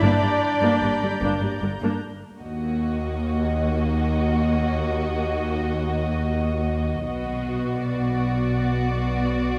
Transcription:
Already playing: violin section A#5 B5 G6
0.01 double bass section G1, cello section G2, viola section A#3 D4, clarinet D4, violin section D5
0.22 cello section G2, viola section G3 A#3
0.61 cello section G2, viola section A#3 D4
0.82 double bass section G1, cello section G2, viola section G3 A#3
1.01 cello section G2, viola section D3 G3
1.21 double bass section G1, cello section G2, viola section A#3 D4
1.41 cello section G2, viola section G3 A#3
1.61 double bass section G1, cello section G2, viola section D3 G3
1.81 cello section G2, viola section A#3 D4
2.40 double bass section D#2, cello section D#2, viola section A#3, violin section F#4 D#5
7.07 double bass section B1, cello section B2, viola section B3, violin section F#4
7.83 violin section D5

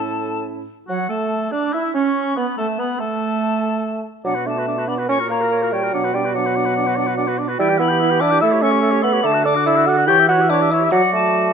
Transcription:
Already playing: bassoon A2, french horn C#4, clarinet E4, oboe A4, flute A5
0.88 clarinet F#3, french horn F#3, bassoon F#3, oboe F#4, flute F#5
1.09 french horn A3, clarinet A3, bassoon A3, oboe A4, flute A5
1.51 clarinet D4, oboe D4, bassoon D4, french horn D4, flute D6
1.73 oboe E4, french horn E4, bassoon E4, clarinet E4, flute E6
1.94 bassoon C#4, oboe C#4, french horn C#4, clarinet C#4, flute C#6
2.36 oboe B3, bassoon B3, french horn B3, clarinet B3, flute B5
2.57 french horn A3, clarinet A3, bassoon A3, oboe A4, flute A5
2.78 oboe B3, clarinet B3, french horn B3, bassoon B3, flute B5
3.00 clarinet A3, french horn A3, bassoon A3, oboe A4, flute A5
4.25 french horn B2, bassoon F#3, clarinet D4, oboe D5, flute F#5
4.35 clarinet F#4, oboe B4
4.46 bassoon A3, clarinet D4, oboe D5, flute A5
4.57 clarinet F#4, oboe B4
4.67 clarinet D4, oboe D5
4.78 clarinet F#4, oboe B4
4.87 bassoon B3, clarinet D4, oboe D5, flute B5
4.98 clarinet F#4, oboe B4
5.08 french horn A#2, bassoon C#4, clarinet A#4, oboe C#5, flute C#6
5.19 clarinet F#4, oboe A#4
5.29 bassoon A#3, clarinet A#4, oboe C#5, flute A#5
5.41 clarinet F#4, oboe A#4
5.51 clarinet A#4, oboe C#5
5.62 clarinet F#4, oboe A#4
5.72 bassoon G3, clarinet A#4, oboe C#5, flute G5
5.82 clarinet F#4, oboe A#4
5.93 french horn B2, bassoon F#3, clarinet D4, oboe D5, flute F#5
6.04 clarinet F#4, oboe B4
6.14 bassoon G3, clarinet D4, oboe D5, flute G5
6.25 clarinet F#4, oboe B4
6.33 bassoon F#3, oboe D5, flute F#5
6.37 clarinet D4
6.46 clarinet F#4, oboe B4
6.56 clarinet D4, oboe D5
6.66 clarinet F#4, oboe B4
6.76 clarinet D4, oboe D5
6.87 clarinet F#4, oboe B4
6.96 clarinet D4, oboe D5
7.07 clarinet F#4, oboe B4
7.17 clarinet D4, oboe D5
7.28 clarinet F#4, oboe B4
7.38 clarinet D4, oboe D5
7.49 clarinet F#4, oboe B4
7.58 french horn E3, bassoon G3, clarinet E4, oboe E5, flute G5
7.69 clarinet G4, oboe G5
7.78 bassoon B3, clarinet E4, oboe E5, flute B5
7.89 clarinet G4, oboe G5
8.00 clarinet E4, oboe E5
8.10 clarinet G4, oboe G5
8.20 bassoon D4, clarinet E4, oboe E5, flute D6
8.31 clarinet G4, oboe G5
8.41 french horn A3, bassoon E4, clarinet A4, oboe E5, flute E6
8.51 clarinet G4, oboe C#5
8.62 bassoon C#4, clarinet A4, oboe E5, flute C#6
8.71 clarinet G4, oboe C#5
8.82 clarinet A4, oboe E5
8.91 clarinet G4, oboe C#5
9.02 bassoon B3, clarinet A4, oboe E5, flute B5
9.13 clarinet G4, oboe C#5
9.23 french horn D3, bassoon A3, clarinet A4, oboe D5, flute A5
9.33 clarinet F#4, oboe F#5
9.44 bassoon D4, clarinet A4, oboe D5, flute D6
9.55 clarinet F#4, oboe F#5
9.65 bassoon E4, clarinet A4, oboe D5, flute E6
9.76 clarinet F#4, oboe F#5
9.86 bassoon F#4, clarinet A4, oboe D5, flute F#6
9.97 clarinet F#4, oboe F#5
10.06 french horn E3, clarinet E4, bassoon G4, oboe C#5, flute G6
10.17 clarinet G4, oboe E5
10.27 clarinet E4, bassoon F#4, oboe C#5, flute F#6
10.39 clarinet G4, oboe E5
10.49 bassoon D4, clarinet E4, oboe C#5, flute D6
10.60 clarinet G4, oboe E5
10.70 clarinet E4, bassoon E4, oboe C#5, flute E6
10.80 clarinet G4
10.84 oboe E5
10.91 french horn F#3, bassoon F#3, clarinet F#4, oboe D5, flute F#5
11.13 bassoon A3, flute A5

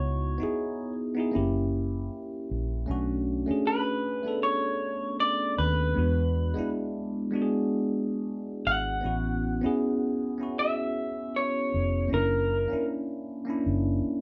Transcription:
Already playing: fingered electric bass C#2, tine electric piano B3 D#4 E4 F#4, clean electric guitar C#5
0.38 tine electric piano B3 D#4 E4
0.43 tine electric piano G#4
1.15 tine electric piano B3 D#4 E4
1.20 tine electric piano G#4
1.31 tine electric piano A#3 C#4 E4
1.36 fingered electric bass F#1, tine electric piano G4
2.51 fingered electric bass A#1
2.86 fingered electric bass B1, tine electric piano A3 C#4 D4
2.91 tine electric piano F#4
3.46 tine electric piano A3 C#4 D4, muted fingered electric bass stroke
3.51 tine electric piano G#4
3.67 clean electric guitar B4
4.23 tine electric piano A3 B3 D4
4.28 tine electric piano A4
4.43 clean electric guitar C#5
5.20 clean electric guitar D5
5.58 fingered electric bass D#2, clean electric guitar B4
5.94 fingered electric bass E2, tine electric piano G#3 B3 D4
5.99 tine electric piano F#4
6.54 tine electric piano G#3 B3 D4, muted fingered electric bass stroke
6.59 tine electric piano E4
7.31 tine electric piano G#3 B3 D4
7.35 tine electric piano F#4
7.42 tine electric piano G#4
8.67 fingered electric bass G#1, clean electric guitar F#5
9.01 fingered electric bass A1, tine electric piano B3 C#4 E4
9.06 tine electric piano F#4
9.61 tine electric piano B3 C#4 E4, muted fingered electric bass stroke
9.66 tine electric piano G#4
10.38 tine electric piano B3 C#4 E4
10.43 tine electric piano F#4
10.59 clean electric guitar E5
11.36 clean electric guitar C#5
11.74 fingered electric bass F1
12.08 tine electric piano A#3 C#4 D4
12.12 fingered electric bass F#1, tine electric piano E4, clean electric guitar A#4
12.68 tine electric piano A#3 C#4 D4
12.72 tine electric piano E4, muted fingered electric bass stroke
13.45 tine electric piano A#3 C#4 D4
13.50 tine electric piano E4
13.66 fingered electric bass F#1
14.05 muted fingered electric bass stroke

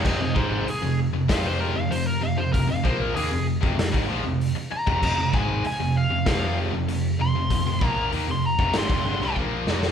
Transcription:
0.04 picked electric bass F1, distorted electric guitar F2 C3, lead electric guitar C5 D#5, kick, crash
0.19 picked electric bass F1, distorted electric guitar F2 C3
0.35 picked electric bass G#1, distorted electric guitar G#2 D#3 G#3, lead electric guitar D#4 C5, kick
0.67 lead electric guitar G#4, muted distorted electric guitar stroke, muted picked electric bass stroke, open hi-hat
0.82 picked electric bass F1, distorted electric guitar F2 C3
1.13 picked electric bass F1, distorted electric guitar F2 C3
1.28 picked electric bass F1, distorted electric guitar F2 C3 F3, lead electric guitar F5, kick, snare, open hi-hat
1.46 lead electric guitar C5
1.60 lead electric guitar A#4
1.76 picked electric bass F1, distorted electric guitar F2 C3, lead electric guitar F5
1.91 picked electric bass F1, distorted electric guitar F2 C3, lead electric guitar C5, open hi-hat
2.07 lead electric guitar A#4
2.21 picked electric bass F1, distorted electric guitar F2 C3, lead electric guitar F5
2.37 picked electric bass F1, distorted electric guitar F2 C3, lead electric guitar C5
2.52 picked electric bass F1, distorted electric guitar F2 C3, lead electric guitar A#4, kick, open hi-hat
2.67 picked electric bass F1, distorted electric guitar F2 C3, lead electric guitar F5
2.83 picked electric bass A#1, distorted electric guitar A#2 F3 A#3, lead electric guitar C5, kick
3.01 lead electric guitar A#4
3.14 picked electric bass D#2, distorted electric guitar D#3 A#3, lead electric guitar G#4, open hi-hat
3.30 picked electric bass F1, distorted electric guitar F2 C3
3.61 picked electric bass F1, distorted electric guitar F2 C3, kick
3.77 picked electric bass F1, distorted electric guitar F2 C3, snare, open hi-hat
3.92 picked electric bass G#1, distorted electric guitar G#2 D#3, kick
4.08 picked electric bass A#1, distorted electric guitar A#2 F3
4.23 picked electric bass F1, distorted electric guitar F2 C3
4.41 open hi-hat
4.55 muted distorted electric guitar stroke, muted picked electric bass stroke
4.71 lead electric guitar A#5, muted distorted electric guitar stroke, muted picked electric bass stroke
4.86 picked electric bass F1, distorted electric guitar F2 C3, kick
5.02 picked electric bass F1, distorted electric guitar F2 C3, kick, crash
5.16 picked electric bass F1, distorted electric guitar F2 C3
5.32 picked electric bass G#1, distorted electric guitar G#2 D#3 G#3, lead electric guitar G#5, kick
5.64 lead electric guitar G#5, muted distorted electric guitar stroke, open hi-hat
5.80 picked electric bass F1, distorted electric guitar F2 C3
5.97 lead electric guitar F5
6.11 picked electric bass F1, distorted electric guitar F2 C3
6.26 distorted electric guitar F2 C3 F3, lead electric guitar F5, kick, snare, open hi-hat
6.73 picked electric bass F1, distorted electric guitar F2 C3
6.88 picked electric bass F1, distorted electric guitar F2 C3, open hi-hat
7.20 picked electric bass F1, distorted electric guitar F2 C3, lead electric guitar C6
7.35 picked electric bass F1, distorted electric guitar F2 C3
7.50 picked electric bass F1, distorted electric guitar F2 C3, kick, open hi-hat
7.66 picked electric bass F1, distorted electric guitar F2 C3
7.81 picked electric bass A#1, distorted electric guitar A#2 F3 A#3, lead electric guitar A#5, kick
8.12 picked electric bass D#2, distorted electric guitar D#3 A#3, open hi-hat
8.28 picked electric bass F1, distorted electric guitar F2 C3, lead electric guitar C6
8.46 lead electric guitar A#5
8.59 picked electric bass F1, distorted electric guitar F2 C3, kick
8.74 picked electric bass G1, distorted electric guitar G2 D3, snare, open hi-hat
8.78 lead electric guitar C6
8.90 picked electric bass F1, distorted electric guitar F2 C3, kick
9.05 picked electric bass G1, distorted electric guitar G2 D3
9.20 picked electric bass C2, distorted electric guitar C3 G3, snare
9.36 picked electric bass A#1, distorted electric guitar A#2 F3 A#3, kick
9.67 picked electric bass F1, distorted electric guitar F2 C3 F3, snare
9.83 snare

